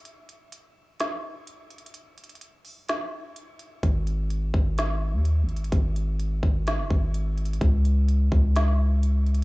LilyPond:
<<
  \new Staff \with { instrumentName = "808-style bass" } { \clef bass \time 4/4 \key cis \mixolydian \tempo 4 = 127 r1 | r1 | gis,,4. gis,,4~ gis,,16 dis,8~ dis,32 gis,,8~ gis,,32 | gis,,4. gis,,8. fis,,16 gis,,4. |
cis,4. cis,2~ cis,8 | }
  \new DrumStaff \with { instrumentName = "Drums" } \drummode { \time 4/4 hh8 hh8 hh4 <hh sn>4 \tuplet 3/2 { hh16 r16 r16 hh16 hh16 hh16 } | hh8 hh32 hh32 hh32 hh32 hh8 hho8 <hh sn>4 hh8 hh8 | <hh bd>8 hh8 hh8 bd8 <hh sn>4 \tuplet 3/2 { hh16 r16 r16 hh16 hh16 hh16 } | <hh bd>8 hh8 hh8 bd8 <hh sn>8 bd8 \tuplet 3/2 { hh16 r16 r16 hh16 hh16 hh16 } |
<hh bd>8 hh8 hh8 bd8 <hh sn>4 \tuplet 3/2 { hh16 r16 r16 hh16 hh16 r16 } | }
>>